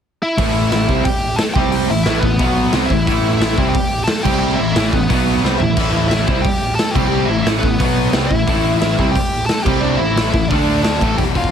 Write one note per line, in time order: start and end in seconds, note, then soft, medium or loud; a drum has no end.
0.23 0.69 E4 medium
0.23 0.70 E5 medium
0.37 0.85 A1 medium
0.37 0.88 A2 medium
0.37 0.88 E3 loud
0.37 0.89 A3 loud
0.37 kick loud
0.37 open hi-hat medium
0.71 1.03 E4 medium
0.71 1.04 E5 loud
0.71 snare loud
0.71 open hi-hat medium
0.88 1.04 C2 loud
0.88 1.05 C3 medium
0.88 1.06 G3 loud
0.88 1.06 C4 loud
0.88 kick medium
1.04 1.37 G4 medium
1.04 1.40 G5 loud
1.04 kick loud
1.04 open hi-hat medium
1.36 1.44 A4 medium
1.36 1.41 A5 loud
1.36 snare loud
1.36 open hi-hat medium
1.54 1.87 C2 medium
1.54 1.89 C3 medium
1.54 1.90 G3 medium
1.54 1.71 G4 medium
1.54 1.70 G5 loud
1.54 kick medium
1.58 1.90 C4 loud
1.71 1.90 G4 medium
1.71 1.90 G5 loud
1.71 open hi-hat medium
1.89 2.05 A1 medium
1.89 2.03 A2 medium
1.89 2.03 E3 medium
1.89 2.06 E4 medium
1.89 2.02 E5 medium
2.03 2.22 A1 medium
2.03 2.22 A2 medium
2.03 2.23 E4 medium
2.03 2.22 E5 medium
2.03 snare loud
2.03 open hi-hat medium
2.07 2.22 E3 medium
2.07 2.24 A3 loud
2.19 2.39 A1 medium
2.19 2.37 A2 medium
2.19 2.37 E3 medium
2.19 2.86 B3 medium
2.19 2.91 B4 medium
2.19 kick medium
2.39 2.71 B1 medium
2.39 2.73 B2 medium
2.39 2.73 F#3 loud
2.39 2.74 B3 loud
2.39 kick loud
2.39 open hi-hat medium
2.73 2.89 C2 medium
2.73 2.90 C3 medium
2.73 2.90 G3 loud
2.73 2.91 C4 loud
2.73 snare loud
2.73 open hi-hat medium
2.86 3.06 A1 medium
2.86 3.37 E4 medium
2.86 3.35 E5 loud
2.90 3.04 A2 medium
2.90 3.04 E3 medium
2.90 kick medium
3.06 3.55 A1 loud
3.06 3.56 A2 loud
3.06 3.57 E3 loud
3.06 3.57 A3 loud
3.06 kick loud
3.06 open hi-hat medium
3.37 3.74 E5 medium
3.37 open hi-hat medium
3.42 3.73 E4 medium
3.42 snare loud
3.57 3.74 C2 loud
3.57 3.74 C3 medium
3.57 3.74 G3 loud
3.57 3.74 C4 loud
3.57 kick medium
3.69 4.04 G5 loud
3.73 4.06 G4 medium
3.73 kick loud
3.73 open hi-hat medium
4.04 4.23 A5 loud
4.04 snare loud
4.04 open hi-hat medium
4.08 4.24 A4 medium
4.23 4.57 C2 medium
4.23 4.58 C3 loud
4.23 4.59 G3 loud
4.23 4.59 C4 loud
4.23 4.42 G4 medium
4.23 4.38 G5 loud
4.23 kick medium
4.23 crash loud
4.39 4.58 G4 medium
4.39 4.58 G5 medium
4.56 4.74 A1 medium
4.56 4.73 A2 medium
4.56 4.73 E3 medium
4.56 4.71 E5 loud
4.61 4.76 E4 medium
4.72 4.91 A1 loud
4.72 4.92 A2 medium
4.72 4.92 E5 medium
4.72 snare loud
4.72 open hi-hat medium
4.77 4.93 E3 medium
4.77 4.93 A3 loud
4.77 4.93 E4 medium
4.89 5.09 A1 medium
4.89 5.61 B4 medium
4.89 kick medium
4.94 5.10 A2 medium
4.94 5.11 E3 medium
4.94 5.57 B3 medium
5.10 5.41 B1 medium
5.10 5.43 B2 medium
5.10 5.44 F#3 medium
5.10 5.44 B3 loud
5.10 kick loud
5.10 open hi-hat medium
5.42 5.59 C2 medium
5.42 5.60 C3 medium
5.42 5.60 G3 medium
5.42 5.61 C4 loud
5.42 snare medium
5.58 5.76 A1 medium
5.58 5.74 A2 medium
5.58 5.74 E3 medium
5.58 6.06 E5 medium
5.58 floor tom medium
5.64 6.09 E4 medium
5.77 6.24 A1 medium
5.77 6.27 A2 loud
5.77 6.28 E3 medium
5.77 6.28 A3 loud
5.77 kick loud
5.77 open hi-hat medium
5.77 crash loud
6.08 6.41 E5 medium
6.08 snare loud
6.08 open hi-hat medium
6.13 6.44 E4 medium
6.28 6.44 C2 loud
6.28 6.45 C3 loud
6.28 6.45 G3 medium
6.28 6.45 C4 loud
6.28 kick loud
6.41 6.75 G5 loud
6.41 kick loud
6.41 open hi-hat medium
6.46 6.77 G4 medium
6.75 6.95 A4 medium
6.75 6.91 A5 medium
6.75 snare loud
6.75 open hi-hat medium
6.91 7.06 G5 medium
6.95 7.27 C2 loud
6.95 7.29 C3 medium
6.95 7.30 G3 loud
6.95 7.30 C4 loud
6.95 7.10 G4 medium
6.95 kick loud
6.95 crash medium
7.07 7.27 G4 medium
7.07 7.27 G5 loud
7.25 7.44 A1 medium
7.25 7.45 E4 medium
7.25 7.41 E5 medium
7.30 7.43 A2 medium
7.30 7.44 E3 medium
7.42 7.61 A1 medium
7.42 7.51 E4 medium
7.42 7.48 E5 medium
7.46 7.62 A2 medium
7.46 7.63 E3 medium
7.46 7.64 A3 loud
7.46 snare loud
7.46 open hi-hat medium
7.59 7.79 A1 medium
7.59 8.31 B4 medium
7.59 kick medium
7.63 7.77 A2 medium
7.63 7.77 E3 medium
7.63 8.27 B3 medium
7.80 8.11 B1 loud
7.80 8.13 B2 medium
7.80 8.14 F#3 loud
7.80 8.14 B3 loud
7.80 kick loud
7.80 open hi-hat medium
8.13 8.29 C2 medium
8.13 8.30 C3 loud
8.13 8.30 G3 loud
8.13 8.31 C4 loud
8.13 snare loud
8.13 open hi-hat medium
8.26 8.46 A1 medium
8.26 8.76 E5 loud
8.31 8.44 A2 medium
8.31 8.44 E3 medium
8.31 8.78 E4 medium
8.31 kick medium
8.47 8.94 A1 medium
8.47 8.97 A2 loud
8.47 8.98 E3 loud
8.47 8.98 A3 loud
8.47 kick loud
8.47 open hi-hat medium
8.79 9.13 E4 medium
8.79 9.15 E5 medium
8.79 snare loud
8.79 open hi-hat medium
8.98 9.14 C2 loud
8.98 9.15 C3 loud
8.98 9.15 G3 medium
8.98 9.15 C4 loud
8.98 kick medium
9.11 9.47 G4 medium
9.11 9.46 G5 medium
9.16 kick loud
9.16 open hi-hat medium
9.46 9.64 A4 medium
9.46 9.63 A5 medium
9.46 snare loud
9.46 open hi-hat medium
9.63 9.97 C2 medium
9.63 9.99 C3 loud
9.63 9.81 G4 medium
9.63 9.82 G5 medium
9.63 kick medium
9.63 crash medium
9.67 10.00 G3 loud
9.67 10.00 C4 loud
9.80 9.98 D4 medium
9.80 9.99 D5 medium
9.97 10.15 A1 medium
9.97 10.14 A2 medium
9.97 10.14 E3 medium
9.97 10.30 E4 medium
9.97 10.29 E5 medium
10.16 10.32 A1 medium
10.16 10.33 A2 medium
10.16 10.34 E3 medium
10.16 10.34 A3 medium
10.16 snare loud
10.16 open hi-hat medium
10.30 10.49 A1 medium
10.30 10.48 E4 medium
10.30 10.48 E5 medium
10.30 kick loud
10.34 10.47 A2 medium
10.34 10.48 E3 medium
10.48 10.97 D2 medium
10.48 11.00 D3 medium
10.48 10.81 D4 medium
10.48 10.82 D5 medium
10.48 kick loud
10.48 open hi-hat medium
10.52 11.00 A3 medium
10.52 11.01 D4 medium
10.83 11.08 C4 medium
10.83 11.16 A4 medium
10.83 11.07 C5 medium
10.83 11.18 A5 medium
10.83 snare loud
10.83 open hi-hat medium
11.00 11.17 A1 medium
11.00 11.17 A2 loud
11.00 11.18 E3 medium
11.00 11.18 A3 loud
11.00 kick loud
11.00 crash medium
11.18 11.31 E1 medium
11.18 11.36 E2 medium
11.18 11.35 B2 medium
11.18 11.34 E3 loud
11.18 11.24 G4 medium
11.18 11.23 G5 medium
11.18 kick loud
11.18 open hi-hat medium
11.35 11.48 E1 medium
11.35 11.51 E2 medium
11.35 11.51 B2 medium
11.35 11.51 E3 medium
11.35 11.51 F4 medium
11.35 11.51 F5 medium
11.35 kick medium
11.35 open hi-hat medium
11.44 kick medium